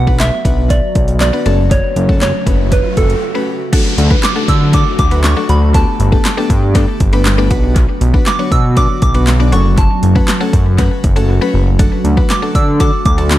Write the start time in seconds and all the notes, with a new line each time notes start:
Already playing: B1 D3 F#3 B3 F#4, riser
0.07 B3 D4 F#4 B4, kick
0.20 E5, snare, clap, closed hi-hat
0.45 B1 B3 D4 F#4 B4, kick, closed hi-hat
0.70 D5, kick, closed hi-hat
0.95 B1, kick, closed hi-hat
1.08 closed hi-hat
1.20 D5, snare, clap, closed hi-hat
1.33 B3 D4 F#4 B4
1.46 F#1 C#3 A3 C#4 F#4 A4, closed hi-hat
1.71 C#5, kick, closed hi-hat
1.96 F#1, closed hi-hat
2.09 A3 C#4 F#4 A4, kick
2.21 C#5, snare, clap, closed hi-hat
2.46 F#1 A3 C#4 F#4 B4, kick, closed hi-hat
2.72 B4, kick, closed hi-hat
2.97 F#1 A4, kick, closed hi-hat
3.10 closed hi-hat
3.35 A3 C#4 F#4 B4
3.73 D3 F#3 A3 D4 F#4 A4, kick, closed hi-hat, crash, downlifter
3.98 D2, closed hi-hat
4.10 F#3 A3 D4 F#4 B4, kick
4.23 D6, snare, clap, closed hi-hat
4.36 F#3 A3 D4 F#4 A4
4.48 D3 E6, kick, closed hi-hat
4.73 F#3 A3 D4 F#4 A4 D6, kick, closed hi-hat
4.99 D2 D6, kick, closed hi-hat
5.11 F#3 A3 D4 F#4 B4, closed hi-hat
5.24 C#6, snare, clap, closed hi-hat
5.36 F#3 A3 D4 F#4 A4
5.49 D2 B5, closed hi-hat
5.74 D3 A3 B3 D4 G4 A4 A5, kick, closed hi-hat
6.00 G1, closed hi-hat
6.12 A3 B3 D4 G4 A4, kick
6.25 snare, clap, closed hi-hat
6.37 A3 B3 D4 G4 A4
6.50 G2, kick, closed hi-hat
6.75 A3 B3 D4 G4 A4, kick, closed hi-hat
7.00 G1, kick, closed hi-hat
7.13 A3 B3 D4 G4 B4, closed hi-hat
7.25 snare, clap, closed hi-hat
7.38 A3 B3 D4 G4 B4
7.51 B1 F#3 B3 D4 F#4 B4, kick, closed hi-hat
7.76 kick, closed hi-hat
8.01 B1, closed hi-hat
8.14 F#3 B3 D4 F#4 B4, kick
8.26 D6, snare, clap, closed hi-hat
8.39 F#3 B3 D4 F#4 C#5
8.51 B2 E6, kick, closed hi-hat
8.77 F#3 B3 D4 F#4 D5 D6, kick, closed hi-hat
9.02 B1 D6, kick, closed hi-hat
9.14 F#3 B3 D4 F#4 B4, closed hi-hat
9.27 snare, clap, closed hi-hat
9.40 F#3 B3 D4 F#4 D5
9.52 F#1 C#3 F#3 A3 C#4 F#4 A4 C#6, closed hi-hat
9.78 A5, kick, closed hi-hat
10.03 F#1, closed hi-hat
10.15 F#3 A3 C#4 F#4 B4, kick
10.28 snare, clap, closed hi-hat
10.40 F#3 A3 C#4 F#4 A4
10.53 F#2, kick, closed hi-hat
10.78 F#3 A3 C#4 F#4 B4, kick, closed hi-hat
11.04 F#1, kick, closed hi-hat
11.16 F#3 A3 C#4 F#4 A4, closed hi-hat
11.41 F#3 A3 C#4 F#4 B4
11.54 F#1
11.79 D3 F#3 A3 D4 F#4 A4, kick, closed hi-hat
12.04 D2, closed hi-hat
12.17 F#3 A3 D4 F#4 B4, kick
12.30 D6, snare, clap, closed hi-hat
12.42 F#3 A3 D4 F#4 A4
12.55 D3 E6, kick, closed hi-hat
12.80 F#3 A3 D4 F#4 A4 D6, kick, closed hi-hat
13.05 D2 D6, kick, closed hi-hat
13.18 F#3 A3 D4 F#4 A4, closed hi-hat
13.31 snare, clap, closed hi-hat